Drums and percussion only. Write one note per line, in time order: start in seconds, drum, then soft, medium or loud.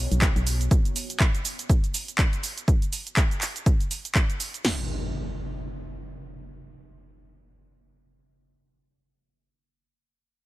0.12 closed hi-hat medium
0.12 shaker soft
0.22 kick loud
0.22 clap loud
0.22 closed hi-hat medium
0.22 shaker soft
0.36 closed hi-hat soft
0.36 shaker soft
0.47 open hi-hat loud
0.47 shaker medium
0.61 closed hi-hat medium
0.61 shaker soft
0.71 kick loud
0.71 closed hi-hat soft
0.71 shaker soft
0.85 closed hi-hat soft
0.85 shaker soft
0.96 open hi-hat loud
0.96 shaker medium
1.10 closed hi-hat soft
1.10 shaker soft
1.20 kick loud
1.20 clap loud
1.20 closed hi-hat soft
1.20 shaker soft
1.35 closed hi-hat soft
1.35 shaker soft
1.45 open hi-hat medium
1.45 shaker medium
1.59 closed hi-hat medium
1.59 shaker soft
1.70 kick loud
1.70 closed hi-hat soft
1.70 shaker soft
1.84 closed hi-hat soft
1.84 shaker soft
1.94 open hi-hat loud
1.94 shaker medium
2.08 closed hi-hat soft
2.08 shaker soft
2.18 kick loud
2.18 clap loud
2.18 closed hi-hat medium
2.18 shaker soft
2.33 closed hi-hat soft
2.33 shaker soft
2.43 open hi-hat medium
2.43 shaker medium
2.58 closed hi-hat soft
2.58 shaker soft
2.68 kick loud
2.68 closed hi-hat soft
2.68 shaker soft
2.82 closed hi-hat soft
2.82 shaker soft
2.93 open hi-hat loud
2.93 shaker medium
3.07 closed hi-hat soft
3.07 shaker soft
3.17 kick loud
3.17 clap loud
3.17 closed hi-hat soft
3.17 shaker soft
3.31 closed hi-hat soft
3.31 shaker soft
3.41 clap medium
3.41 open hi-hat medium
3.41 shaker medium
3.56 closed hi-hat soft
3.56 shaker soft
3.66 kick loud
3.66 closed hi-hat soft
3.66 shaker soft
3.80 closed hi-hat soft
3.80 shaker soft
3.91 open hi-hat loud
3.91 shaker medium
4.05 closed hi-hat soft
4.05 shaker soft
4.15 kick loud
4.15 clap loud
4.15 closed hi-hat soft
4.15 shaker soft
4.30 closed hi-hat soft
4.30 shaker soft
4.40 open hi-hat medium
4.40 shaker medium
4.54 closed hi-hat soft
4.54 shaker soft
4.65 snare loud
4.65 crash medium